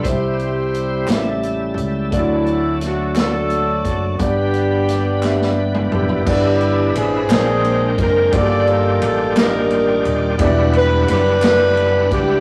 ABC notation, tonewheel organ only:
X:1
M:6/8
L:1/8
Q:3/8=58
K:G
V:1 name="Tonewheel organ"
[G,CEc]3 [^C,G,EGA]3 | [F,A,DA]6 | [G,B,DB]6 | [E,DE_B=B]3 [_A,CD_Bg]3 |
[_E,G,=FGd]6 | [G,DEBf]6 |]